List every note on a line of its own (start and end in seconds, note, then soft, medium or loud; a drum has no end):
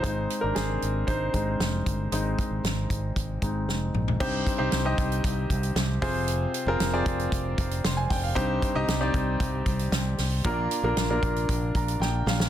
0.00 0.25 G#1 loud
0.00 1.32 G#3 medium
0.00 0.55 C4 soft
0.00 1.07 D#4 medium
0.00 0.38 C5 medium
0.00 kick loud
0.04 closed hi-hat medium
0.30 closed hi-hat medium
0.41 0.54 G#1 medium
0.41 0.48 D4 medium
0.41 0.46 A#4 medium
0.55 0.77 G#1 medium
0.55 1.05 C4 medium
0.55 1.04 G#4 medium
0.55 snare medium
0.55 closed hi-hat medium
0.82 1.04 G#1 medium
0.82 closed hi-hat medium
1.07 1.29 G#1 medium
1.07 1.33 D#4 medium
1.07 1.82 C5 medium
1.07 kick medium
1.07 closed hi-hat medium
1.33 1.55 G#1 medium
1.33 1.57 G#3 soft
1.33 1.57 C4 soft
1.33 1.58 D#4 soft
1.33 kick medium
1.33 closed hi-hat medium
1.60 1.81 F1 medium
1.60 snare medium
1.60 closed hi-hat medium
1.86 2.08 G1 medium
1.86 kick medium
1.86 closed hi-hat medium
2.12 2.33 G#1 medium
2.12 2.86 G#3 soft
2.12 2.87 C4 soft
2.12 2.87 D#4 medium
2.12 closed hi-hat medium
2.39 kick medium
2.39 closed hi-hat medium
2.51 2.62 G#1 medium
2.64 2.85 G#1 medium
2.64 snare medium
2.64 closed hi-hat medium
2.90 3.12 G#1 medium
2.90 kick medium
2.90 closed hi-hat medium
3.16 3.37 G#1 medium
3.16 kick medium
3.16 closed hi-hat medium
3.42 3.68 G#1 medium
3.42 3.66 G#3 soft
3.42 3.66 C4 soft
3.42 3.66 D#4 soft
3.42 kick medium
3.42 closed hi-hat medium
3.68 3.89 F1 medium
3.68 snare soft
3.94 4.15 A#1 medium
3.94 mid tom medium
4.08 floor tom medium
4.20 4.42 C2 loud
4.20 4.94 G2 medium
4.20 4.54 C4 medium
4.20 4.54 D#4 medium
4.20 4.54 G4 medium
4.20 4.54 C5 loud
4.20 kick loud
4.20 crash loud
4.47 kick loud
4.47 closed hi-hat medium
4.58 4.70 C2 loud
4.58 4.81 C4 medium
4.58 4.81 D#4 medium
4.58 4.81 G4 medium
4.58 4.81 C5 medium
4.72 4.94 C2 medium
4.72 snare loud
4.72 closed hi-hat medium
4.85 5.75 C4 medium
4.85 5.75 D#4 medium
4.85 5.75 G4 medium
4.85 5.75 D#5 medium
4.98 5.20 C2 medium
4.98 kick medium
4.98 closed hi-hat medium
5.12 closed hi-hat medium
5.24 5.45 C2 medium
5.24 kick medium
5.24 closed hi-hat medium
5.50 5.71 C2 loud
5.50 kick medium
5.50 closed hi-hat medium
5.63 closed hi-hat soft
5.75 5.97 C2 medium
5.75 snare loud
5.75 closed hi-hat medium
6.02 6.45 F1 loud
6.02 6.76 C3 medium
6.02 6.58 C4 medium
6.02 6.58 F4 medium
6.02 6.58 G#4 medium
6.02 6.58 C5 loud
6.02 kick loud
6.02 snare soft
6.02 open hi-hat medium
6.28 closed hi-hat loud
6.54 closed hi-hat medium
6.67 6.78 F1 loud
6.67 6.90 C4 medium
6.67 6.90 F4 medium
6.67 6.90 G#4 medium
6.67 6.90 A#4 loud
6.80 7.01 F1 medium
6.80 snare loud
6.80 closed hi-hat medium
6.93 7.83 C4 medium
6.93 7.83 F4 medium
6.93 7.83 G#4 medium
6.93 7.83 D5 medium
7.06 7.27 F1 medium
7.06 kick loud
7.06 closed hi-hat medium
7.19 closed hi-hat soft
7.32 7.53 F1 medium
7.32 kick loud
7.32 closed hi-hat medium
7.58 7.79 F1 medium
7.58 kick medium
7.58 closed hi-hat medium
7.71 closed hi-hat soft
7.84 8.06 F1 medium
7.84 7.97 C6 medium
7.84 snare loud
7.84 closed hi-hat medium
7.97 8.10 G#5 medium
8.10 8.32 F1 loud
8.10 8.23 G5 medium
8.10 kick medium
8.10 snare soft
8.10 open hi-hat medium
8.23 8.48 F5 medium
8.35 8.57 C2 loud
8.35 9.10 G2 medium
8.35 8.69 C4 medium
8.35 8.69 D#4 medium
8.35 8.70 G4 medium
8.35 8.69 C5 loud
8.35 kick loud
8.35 closed hi-hat loud
8.62 kick loud
8.62 closed hi-hat medium
8.75 8.86 C2 loud
8.75 8.98 C4 medium
8.75 8.98 D#4 medium
8.75 8.98 G4 medium
8.75 8.98 D#5 loud
8.88 9.09 C2 medium
8.88 snare loud
8.88 closed hi-hat medium
9.01 9.91 C4 medium
9.01 9.90 D#4 medium
9.01 9.90 G4 medium
9.01 9.91 D5 medium
9.14 9.35 C2 medium
9.14 kick loud
9.14 closed hi-hat medium
9.40 9.62 C2 loud
9.40 kick medium
9.40 closed hi-hat medium
9.66 9.88 C2 medium
9.66 kick medium
9.66 closed hi-hat medium
9.79 closed hi-hat medium
9.92 10.13 C2 loud
9.92 snare loud
9.92 closed hi-hat medium
10.18 10.40 C2 medium
10.18 snare soft
10.18 open hi-hat medium
10.45 10.66 A#1 loud
10.45 10.79 A#3 medium
10.45 10.79 D4 medium
10.45 10.79 F4 medium
10.45 10.79 A#4 medium
10.45 kick loud
10.45 closed hi-hat loud
10.71 closed hi-hat medium
10.83 10.94 A#1 loud
10.83 11.07 A#3 medium
10.83 11.07 D4 medium
10.83 11.07 F4 medium
10.83 11.06 A#4 medium
10.97 11.18 A#1 medium
10.97 snare loud
10.97 closed hi-hat medium
11.10 12.00 A#3 medium
11.10 12.00 D4 medium
11.10 12.00 F4 medium
11.10 12.00 A#4 medium
11.23 11.44 A#1 loud
11.23 kick medium
11.23 closed hi-hat medium
11.36 closed hi-hat soft
11.49 11.70 A#1 medium
11.49 kick loud
11.49 closed hi-hat medium
11.75 11.96 A#1 medium
11.75 11.99 A#5 medium
11.75 kick medium
11.75 closed hi-hat medium
11.88 closed hi-hat medium
12.00 12.22 A#1 loud
12.00 12.26 G5 medium
12.00 snare medium
12.26 12.48 A#1 loud
12.26 12.49 F5 medium
12.26 snare medium
12.40 snare medium